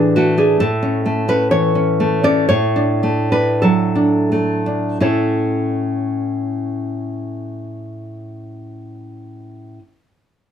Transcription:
0.00 0.56 A2 medium
0.00 0.60 E3 soft
0.00 0.15 A3 soft
0.00 0.36 D4 soft
0.00 0.14 G#4 medium
0.16 0.60 A3 soft
0.16 0.38 F#4 medium
0.38 0.60 D4 soft
0.38 0.60 G#4 medium
0.60 2.46 A2 medium
0.60 1.25 A4 medium
0.83 1.27 C#4 soft
1.06 1.99 A3 soft
1.28 1.74 C#4 soft
1.28 1.51 B4 medium
1.51 2.50 E3 soft
1.51 2.21 C#5 medium
1.75 2.22 C#4 soft
2.00 2.50 A3 soft
2.23 2.49 C#4 soft
2.23 2.48 D5 medium
2.49 4.97 A2 medium
2.49 3.28 C#5 medium
2.76 3.31 D4 soft
3.03 4.31 A3 soft
3.32 3.94 D4 soft
3.32 3.63 B4 medium
3.62 5.01 F#3 soft
3.62 4.28 A4 medium
3.95 4.65 D4 soft
4.32 5.01 A3 soft
4.66 5.01 D4 soft
5.00 9.78 A2 soft
5.00 9.79 C#4 soft
5.00 9.78 E4 soft
5.00 9.79 A4 soft
5.00 9.79 C#5 soft

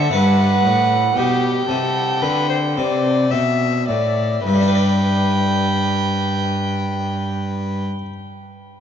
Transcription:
0.00 0.10 D3 soft
0.00 0.13 D3 medium
0.00 0.12 A4 medium
0.00 0.10 C5 soft
0.00 0.14 E5 medium
0.11 0.63 G2 medium
0.11 0.61 G2 soft
0.11 4.41 D4 soft
0.11 4.42 B4 soft
0.11 1.04 B4 medium
0.11 1.18 F#5 medium
0.65 1.15 A2 soft
0.65 1.12 A2 soft
1.16 1.68 B2 medium
1.16 1.65 B2 soft
1.16 1.65 G4 medium
1.16 3.33 G5 medium
1.69 2.24 C3 soft
1.69 2.19 C3 soft
1.69 2.23 A4 medium
2.22 2.73 D3 soft
2.22 2.79 D3 medium
2.22 2.49 B4 medium
2.49 2.57 C5 medium
2.76 3.32 C3 medium
2.76 3.29 C3 soft
2.76 3.33 D5 medium
3.31 3.85 B2 soft
3.31 3.91 B2 soft
3.31 3.88 E5 medium
3.89 4.42 A2 soft
3.89 4.45 A2 soft
3.89 4.45 D5 medium
4.46 7.84 G2 medium
4.46 7.84 G2 soft
4.46 7.84 B4 medium
4.46 7.83 G5 medium
4.54 7.91 G3 soft
4.61 7.99 D4 soft
4.68 8.05 B4 soft
4.75 8.13 D5 soft

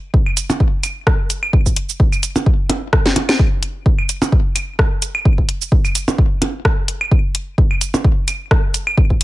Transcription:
0.14 kick loud
0.26 claves medium
0.37 closed hi-hat medium
0.37 cabasa medium
0.50 percussion blips medium
0.50 cabasa soft
0.60 kick loud
0.83 closed hi-hat medium
0.83 cabasa soft
0.83 claves medium
1.07 kick loud
1.07 cross-stick loud
1.30 closed hi-hat medium
1.30 cabasa soft
1.43 claves medium
1.53 kick loud
1.66 kick medium
1.66 cabasa medium
1.76 closed hi-hat medium
1.89 cabasa medium
2.00 kick loud
2.12 cabasa soft
2.12 claves medium
2.23 closed hi-hat medium
2.23 cabasa medium
2.36 percussion blips medium
2.36 cabasa soft
2.46 kick loud
2.70 closed hi-hat medium
2.70 percussion blips medium
2.93 kick loud
2.93 cross-stick loud
3.06 snare medium
3.16 closed hi-hat medium
3.16 percussion blips medium
3.29 snare loud
3.29 claves medium
3.39 kick loud
3.63 closed hi-hat medium
3.86 kick loud
3.99 claves medium
4.09 closed hi-hat medium
4.09 cabasa medium
4.22 percussion blips medium
4.22 cabasa soft
4.32 kick loud
4.55 closed hi-hat medium
4.55 cabasa soft
4.55 claves medium
4.79 kick loud
4.79 cross-stick loud
5.02 closed hi-hat medium
5.02 cabasa soft
5.15 claves medium
5.25 kick loud
5.38 kick medium
5.49 closed hi-hat medium
5.62 cabasa soft
5.72 kick loud
5.85 cabasa soft
5.85 claves medium
5.95 closed hi-hat loud
5.95 cabasa soft
6.08 percussion blips medium
6.08 cabasa soft
6.18 kick loud
6.42 closed hi-hat medium
6.42 percussion blips medium
6.65 kick loud
6.65 cross-stick loud
6.88 closed hi-hat medium
7.01 claves medium
7.11 kick loud
7.35 closed hi-hat medium
7.58 kick loud
7.71 claves medium
7.81 closed hi-hat loud
7.81 cabasa soft
7.94 percussion blips medium
7.94 cabasa soft
8.04 kick loud
8.28 closed hi-hat medium
8.28 cabasa soft
8.28 claves medium
8.51 kick loud
8.51 cross-stick loud
8.74 closed hi-hat medium
8.74 cabasa soft
8.87 claves medium
8.98 kick loud
9.10 kick medium
9.21 closed hi-hat medium

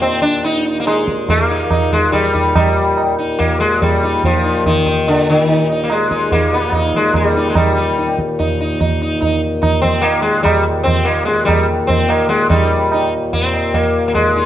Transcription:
0.00 2.53 D#2 medium
0.00 2.54 A#2 medium
0.00 0.21 C4 medium
0.00 tabla tin medium
0.22 0.44 D4 medium
0.44 0.64 D#4 medium
0.44 tabla tin medium
0.66 0.79 D#4 soft
0.80 0.86 A#3 medium
0.87 1.30 G#3 medium
0.87 1.06 D#4 soft
0.87 tabla na medium
1.08 tabla ke medium
1.29 1.92 A#3 medium
1.29 tabla tin medium
1.29 tabla ge medium
1.50 1.69 D#4 soft
1.50 tabla na soft
1.71 1.91 D#4 soft
1.71 tabla na medium
1.71 tabla ge medium
1.92 2.12 G#3 medium
1.92 tabla ge soft
2.11 2.54 G3 medium
2.11 2.31 D#4 soft
2.11 tabla na medium
2.11 tabla ge medium
2.33 2.53 D#4 soft
2.33 tabla ge soft
2.55 7.54 D#2 medium
2.55 7.54 A#2 medium
2.55 3.14 G3 medium
2.55 tabla na loud
2.55 tabla ge loud
2.97 tabla na medium
3.19 3.38 D#4 soft
3.39 3.60 A#3 medium
3.39 tabla tin medium
3.39 tabla ge medium
3.60 3.81 G#3 medium
3.82 4.24 G3 medium
3.82 tabla tin medium
3.82 tabla ge medium
4.03 4.22 D#4 soft
4.24 4.63 F3 medium
4.24 tabla tin medium
4.24 tabla ge medium
4.44 4.63 D#4 soft
4.66 5.08 D#3 medium
4.66 tabla na medium
4.66 tabla ge medium
4.86 5.05 D#4 soft
4.86 tabla ge medium
5.07 5.29 D3 medium
5.07 tabla tin medium
5.30 5.67 D#3 medium
5.49 5.68 D#4 soft
5.49 tabla tin medium
5.70 5.89 D#4 soft
5.70 tabla na medium
5.84 5.90 A#3 medium
5.90 6.32 G#3 medium
5.90 tabla na medium
6.11 6.30 D#4 soft
6.11 tabla ke medium
6.32 6.96 A#3 medium
6.32 tabla tin medium
6.32 tabla ge medium
6.52 6.72 D#4 soft
6.52 tabla na medium
6.72 6.93 D#4 soft
6.72 tabla na medium
6.72 tabla ge medium
6.93 7.14 G#3 medium
6.93 tabla ge soft
7.14 7.49 G3 medium
7.14 tabla na medium
7.14 tabla ge medium
7.35 7.55 D#4 soft
7.35 tabla te medium
7.50 7.56 G#3 medium
7.55 12.47 D#2 medium
7.55 12.47 A#2 medium
7.55 8.14 G3 medium
7.55 tabla na loud
7.55 tabla ge medium
7.75 7.95 D#4 soft
7.98 8.17 D#4 soft
7.98 tabla te medium
8.08 tabla te medium
8.19 tabla ke medium
8.29 tabla te medium
8.39 8.58 D#4 soft
8.39 tabla tin medium
8.39 tabla ge medium
8.61 8.79 D#4 soft
8.80 8.99 D#4 soft
8.80 tabla tin medium
8.80 tabla ge medium
9.02 9.19 D#4 soft
9.21 9.40 D#4 soft
9.21 tabla tin medium
9.21 tabla ge medium
9.62 9.81 D#4 soft
9.62 tabla na medium
9.62 tabla ge medium
9.82 10.04 C4 medium
9.82 tabla tin medium
9.82 tabla ge medium
10.02 10.22 A#3 medium
10.02 tabla na medium
10.22 10.43 G#3 medium
10.22 tabla te medium
10.43 10.63 G3 medium
10.43 tabla na loud
10.43 tabla ge medium
10.84 11.06 C4 loud
10.84 tabla tin medium
10.84 tabla ge medium
11.05 11.25 A#3 medium
11.05 tabla na medium
11.25 11.45 G#3 medium
11.25 tabla te medium
11.45 11.66 G3 medium
11.45 tabla na medium
11.45 tabla ge medium
11.87 12.09 C4 medium
11.87 tabla tin medium
11.87 tabla ge medium
12.09 12.28 A#3 medium
12.09 tabla na medium
12.29 12.49 G#3 medium
12.29 tabla te medium
12.48 14.46 D#2 medium
12.48 14.46 A#2 medium
12.48 13.08 G3 medium
12.48 12.70 D#4 soft
12.48 tabla na loud
12.48 tabla ge medium
12.92 13.11 D#4 soft
12.92 tabla na medium
13.33 13.75 C4 medium
13.33 tabla tin medium
13.33 tabla ge medium
13.54 tabla na medium
13.74 14.07 A#3 medium
13.74 tabla tin medium
13.74 tabla ge medium
14.08 14.14 A#3 medium
14.14 14.46 G#3 medium
14.14 tabla tin medium
14.14 tabla ge medium
14.36 14.46 D#4 soft

